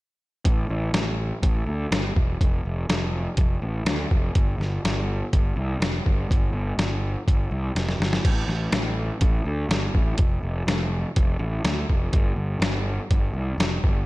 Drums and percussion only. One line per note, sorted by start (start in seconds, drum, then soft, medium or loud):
0.45 kick medium
0.45 closed hi-hat medium
0.94 snare loud
0.94 closed hi-hat medium
1.43 kick medium
1.43 closed hi-hat medium
1.92 snare loud
1.92 closed hi-hat medium
2.17 kick medium
2.41 kick loud
2.41 closed hi-hat medium
2.90 snare loud
2.90 closed hi-hat medium
3.37 kick medium
3.37 closed hi-hat medium
3.86 snare loud
3.86 closed hi-hat medium
4.11 kick medium
4.35 kick loud
4.35 closed hi-hat soft
4.61 snare soft
4.85 snare medium
4.85 closed hi-hat medium
5.33 kick loud
5.33 closed hi-hat medium
5.82 snare loud
5.82 closed hi-hat medium
6.06 kick medium
6.31 kick loud
6.31 closed hi-hat medium
6.79 snare medium
6.79 closed hi-hat medium
7.28 kick loud
7.28 closed hi-hat medium
7.76 snare medium
7.76 closed hi-hat medium
7.89 snare medium
8.02 snare medium
8.13 snare medium
8.25 kick loud
8.25 closed hi-hat soft
8.25 crash medium
8.49 snare soft
8.72 snare loud
8.72 closed hi-hat medium
9.21 kick loud
9.21 closed hi-hat medium
9.71 snare loud
9.71 closed hi-hat medium
9.95 kick medium
10.18 kick loud
10.18 closed hi-hat medium
10.68 snare medium
10.68 closed hi-hat medium
11.16 kick loud
11.16 closed hi-hat medium
11.65 snare loud
11.65 closed hi-hat medium
11.90 kick medium
12.13 kick loud
12.13 closed hi-hat soft
12.62 snare loud
12.62 closed hi-hat medium
13.11 kick loud
13.11 closed hi-hat medium
13.60 snare loud
13.60 closed hi-hat medium
13.84 kick medium